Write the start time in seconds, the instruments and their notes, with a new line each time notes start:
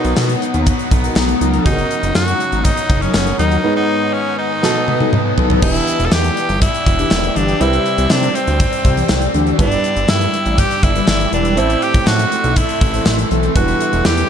Already playing: grand piano B2 B3 D#4 F#4 A#4, distorted electric guitar B2 F#3 B3, ambient pad B3 F#5 A#5 D#6, tenor saxophone D#4
0.04 analog synth bass B1, closed hi-hat
0.17 analog synth bass B2, snare, clap, tambourine
0.29 closed hi-hat
0.42 closed hi-hat
0.54 analog synth bass D#2, closed hi-hat
0.66 distorted electric guitar B2 F#3 B3, kick, closed hi-hat
0.79 closed hi-hat
0.91 analog synth bass B1, distorted electric guitar F#3 B3, kick, closed hi-hat
1.04 analog polysynth F#3 D#4 A#4, closed hi-hat
1.16 analog synth bass B1, snare, clap, tambourine
1.29 closed hi-hat
1.41 analog synth bass C#2, analog polysynth F#3 D#4 A#4, closed hi-hat
1.54 closed hi-hat
1.64 analog synth bass F#1, distorted electric guitar F#2 C#3 F#3, grand piano C#4 D#4 F#4 G#4, tenor saxophone D#4, ambient pad C#5, kick, closed hi-hat
1.73 grand piano A#4
1.78 closed hi-hat
1.91 closed hi-hat
2.03 analog synth bass F#1, closed hi-hat
2.15 analog synth bass F#2, tenor saxophone F#4, snare, clap, tambourine
2.28 closed hi-hat
2.40 closed hi-hat
2.52 analog synth bass G#1, closed hi-hat
2.64 distorted electric guitar F#2 C#3 F#3, tenor saxophone D#4, kick, closed hi-hat
2.77 closed hi-hat
2.89 analog synth bass F#1, distorted electric guitar C#3 F#3, kick, closed hi-hat
3.02 analog polysynth F#3 D#4 A#4, tenor saxophone C#4, closed hi-hat
3.14 analog synth bass F#1, snare, clap, tambourine
3.27 closed hi-hat
3.39 analog synth bass D#2, analog polysynth F#3 D#4 A#4, tenor saxophone D#4, closed hi-hat
3.52 closed hi-hat
3.63 distorted electric guitar G#2 D#3 G#3, grand piano G#2 B3 D#4 G#4 B4, ambient pad B4
3.76 tenor saxophone D#4
4.13 tenor saxophone C#4
4.38 tenor saxophone D#4
4.62 distorted electric guitar B2 F#3 B3, grand piano B2 B3 D#4 F#4 A4, snare
4.87 distorted electric guitar F#3 B3, high tom
5.00 analog polysynth F#3 D#4 A4, high tom
5.13 mid tom
5.38 analog polysynth F#3 D#4 A4, floor tom
5.50 floor tom
5.61 analog synth bass E1, distorted electric guitar E2 B2 E3, grand piano E3 B3 D4 E4 G4 B4, tenor saxophone E4, ambient pad D5 G5 D6 E6, kick, crash
5.75 closed hi-hat
5.87 closed hi-hat
6.00 analog synth bass E1, closed hi-hat
6.06 tenor saxophone A4
6.12 analog synth bass E2, tenor saxophone G4, snare, clap, tambourine
6.24 closed hi-hat
6.37 closed hi-hat
6.49 analog synth bass G1, closed hi-hat
6.61 distorted electric guitar E2 B2 E3, tenor saxophone E4, kick, closed hi-hat
6.74 closed hi-hat
6.86 analog synth bass E1, distorted electric guitar B2 E3, kick, closed hi-hat
6.99 analog polysynth E3 D4 G4, closed hi-hat
7.11 analog synth bass E1, snare, clap, tambourine
7.23 closed hi-hat
7.36 analog synth bass G1, analog polysynth E3 D4 G4, tenor saxophone D4, closed hi-hat
7.48 closed hi-hat
7.60 analog synth bass C2, distorted electric guitar C3 G3 C4, grand piano C3 G3 C4 E4 G4 B4, tenor saxophone E4, closed hi-hat
7.73 closed hi-hat
7.86 closed hi-hat
7.98 analog synth bass C2, closed hi-hat
8.10 analog synth bass C3, tenor saxophone D4, snare, clap, tambourine
8.23 closed hi-hat
8.35 tenor saxophone C4, closed hi-hat
8.47 analog synth bass D2, closed hi-hat
8.59 distorted electric guitar C3 G3 C4, kick, closed hi-hat
8.73 closed hi-hat
8.84 analog synth bass C2, distorted electric guitar G3 C4, kick, closed hi-hat
8.97 analog polysynth E3 C4 G4, closed hi-hat
9.09 analog synth bass C2, snare, clap, tambourine
9.22 closed hi-hat
9.34 analog synth bass D2, analog polysynth E3 D4 G4, closed hi-hat
9.47 closed hi-hat
9.58 analog synth bass G1, distorted electric guitar G2 D3 G3, grand piano G2 B3 D4 E4 G4 B4, tenor saxophone D4, ambient pad D6, kick, closed hi-hat
9.72 closed hi-hat
9.84 closed hi-hat
9.96 analog synth bass G1, closed hi-hat
10.09 analog synth bass G2, tenor saxophone E4, snare, clap, tambourine
10.21 closed hi-hat
10.34 closed hi-hat
10.46 analog synth bass A1, closed hi-hat
10.57 distorted electric guitar G2 D3 G3, tenor saxophone G4, kick, closed hi-hat
10.71 closed hi-hat
10.82 analog synth bass G1, distorted electric guitar D3 G3, tenor saxophone E4, kick, closed hi-hat
10.95 analog polysynth G3 E4 B4, closed hi-hat
11.08 analog synth bass G1, tenor saxophone E4, snare, clap, tambourine
11.20 closed hi-hat
11.33 analog synth bass E1, analog polysynth G3 E4 B4, tenor saxophone D4, closed hi-hat
11.45 closed hi-hat
11.56 analog synth bass A1, distorted electric guitar A2 E3, grand piano A2 A3 C4 E4 A4 C5, tenor saxophone E4, ambient pad A4 E5 C6, closed hi-hat
11.60 distorted electric guitar A3
11.70 closed hi-hat
11.82 tenor saxophone G4, closed hi-hat
11.94 analog synth bass A1, kick, closed hi-hat
12.07 analog synth bass A2, tenor saxophone F#4, snare, clap, tambourine
12.19 closed hi-hat
12.32 closed hi-hat
12.44 analog synth bass B1, closed hi-hat
12.56 distorted electric guitar A2 E3 A3, tenor saxophone E4, kick, closed hi-hat
12.69 closed hi-hat
12.81 analog synth bass A1, distorted electric guitar E3 A3, kick, closed hi-hat
12.94 analog polysynth E3 C4 A4, closed hi-hat
13.06 analog synth bass A1, snare, clap, tambourine
13.18 closed hi-hat
13.31 analog synth bass B1, analog polysynth E3 C4 A4, closed hi-hat
13.43 closed hi-hat
13.54 analog synth bass E1, distorted electric guitar E2 B2 E3, grand piano E3 G3 B3 D4 E4 B4, ambient pad G3 D5 B5, tenor saxophone F#4, kick, closed hi-hat
13.68 closed hi-hat
13.81 closed hi-hat
13.93 analog synth bass E1, closed hi-hat
14.05 analog synth bass E2, tenor saxophone G4, snare, clap, tambourine
14.17 closed hi-hat